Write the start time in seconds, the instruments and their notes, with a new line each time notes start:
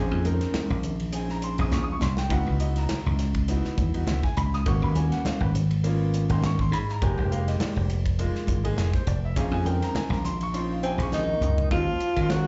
Already playing: slap bass A#1, grand piano C4 C#4 D#4 G#4
0.11 slap bass F2
0.24 grand piano C4 C#4 D#4 A#4, hi-hat pedal, ride, muted conga, high conga
0.41 snare, ride
0.54 snare, hi-hat pedal, ride, high conga
0.70 slap bass A#1
0.83 grand piano D#4 A#4, hi-hat pedal, ride, muted conga, low conga
1.00 ride
1.12 grand piano C4 C#4 D#4 G#4 G#5, hi-hat pedal, ride
1.29 grand piano A#5, snare
1.42 grand piano C6, hi-hat pedal, ride
1.57 slap bass A#1, grand piano C4 C#4 D#4 G#4 D#6, ride
1.72 slap bass A#1, grand piano C#6, snare, hi-hat pedal, high conga, low conga
1.83 grand piano D#4 D#6
1.88 grand piano G#4
1.92 grand piano C#6
2.01 slap bass C2, grand piano C6, snare, hi-hat pedal
2.17 grand piano G5, snare
2.29 slap bass C#2, grand piano B3 D#4 E4 F#4 F#5, kick, hi-hat pedal, ride, muted conga
2.47 slap bass C#2, grand piano B4
2.59 grand piano B3 D#4 E4 F#4 D#5, hi-hat pedal, ride, muted conga
2.76 grand piano A#5, snare, ride
2.89 snare, hi-hat pedal, ride, high conga
3.06 slap bass C#2
3.18 grand piano E4 F#4, snare, hi-hat pedal, ride, muted conga
3.35 kick, ride
3.48 grand piano B3 D#4 E4 F#4, hi-hat pedal, ride, muted conga
3.65 muted slap bass stroke, snare
3.77 slap bass E2, kick, hi-hat pedal, ride, high conga
3.94 grand piano B3 D#4 E4 F#4, ride
4.07 slap bass C#2, grand piano E5, snare, hi-hat pedal, ride, high conga
4.23 grand piano E4 G#4 G#5, kick, snare
4.37 slap bass C#2, grand piano B5, hi-hat pedal, ride
4.53 grand piano D#6, snare
4.66 slap bass G#1, grand piano A#3 B3 C#4 F#4 C#6, kick, hi-hat pedal, ride, muted conga
4.82 slap bass D#2, grand piano B5
4.95 grand piano A#3 B3 C#4 F#4 G#5, hi-hat pedal, ride, muted conga, high conga
5.12 grand piano F#5, snare, ride
5.25 grand piano F5, snare, hi-hat pedal, ride, high conga
5.40 slap bass G#1, grand piano B4
5.55 grand piano C#4 F#4, hi-hat pedal, ride, muted conga, low conga
5.71 ride
5.84 grand piano A#3 B3 C#4 F4, hi-hat pedal, ride, muted conga
6.14 hi-hat pedal, ride
6.29 slap bass G#1, grand piano A#3 B3 C#4 D#4 C6, ride
6.43 grand piano C#6, snare, hi-hat pedal, ride, high conga, low conga
6.59 grand piano C#4 D#4 C6, kick, snare
6.71 slap bass G#2, grand piano B5, hi-hat pedal, ride
6.89 grand piano A#5, snare
7.01 slap bass F1, grand piano G#3 A#3 D#4 G4 G#5, kick, hi-hat pedal, ride, muted conga
7.17 slap bass F1, grand piano G5
7.31 grand piano G#3 A#3 D#4 G4 F5, hi-hat pedal, ride, muted conga
7.48 grand piano D#5, snare, ride
7.60 grand piano D5, snare, hi-hat pedal, ride, high conga
7.76 slap bass F1
7.89 grand piano D#4 G4, hi-hat pedal, ride, muted conga
8.06 kick, ride
8.18 grand piano G#3 A#3 D#4 F4, hi-hat pedal, ride, muted conga
8.35 muted slap bass stroke, snare
8.47 slap bass G#1, kick, hi-hat pedal, ride, high conga
8.64 grand piano G#3 A#3 D#4 G#4, ride
8.77 slap bass F1, snare, hi-hat pedal, ride, high conga
8.93 grand piano D#4 G4 C5, kick, snare
9.07 slap bass F1, grand piano D5, hi-hat pedal, ride
9.25 grand piano E5
9.36 slap bass A#1, grand piano C4 C#4 D#4 G#4 F5, kick, hi-hat pedal, ride
9.51 slap bass F2, grand piano G#5
9.65 grand piano C4 C#4 D#4 A#4 G5, hi-hat pedal, ride, muted conga, high conga
9.82 grand piano A#5, snare, ride
9.95 grand piano G#5, snare, hi-hat pedal, ride, high conga
10.10 slap bass A#1, grand piano A#5, snare
10.24 grand piano D#4 F4 C6, snare, hi-hat pedal, ride, muted conga, low conga
10.41 grand piano C#6, ride
10.53 grand piano C4 C#4 D#4 F4 C6, hi-hat pedal, ride, muted conga
10.73 grand piano F5
10.83 trombone C3, tenor saxophone C4, grand piano G#5, hi-hat pedal, ride
10.98 slap bass A#1, grand piano C4 C#4 D#4 G#4, ride
11.02 grand piano C#6
11.12 trombone D#3, tenor saxophone D#4, snare, hi-hat pedal, high conga, low conga
11.28 grand piano D#4 G#4
11.41 slap bass C#2, hi-hat pedal, mid tom
11.58 floor tom
11.71 slap bass D#2, trombone F3, grand piano F#3 G#3 C#4 F4, tenor saxophone F4, kick, ride, muted conga
11.88 grand piano C#4 F4
12.00 muted slap bass stroke, hi-hat pedal, ride, muted conga
12.16 slap bass D#3, grand piano F#3 G#3 C#4 F4, kick, snare, ride
12.30 trombone F#3, tenor saxophone F#4, snare, ride, high conga